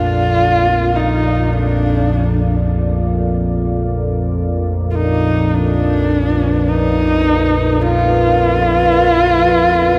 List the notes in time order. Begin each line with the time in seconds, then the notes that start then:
Already playing: A#1 F2 F4 A4 A#4 D5 F5
0.96 D#4
1.53 D4
3.23 A#4
4.82 B4
4.91 F4
4.95 D#4
5.54 D4
6.68 D#4
7.82 F4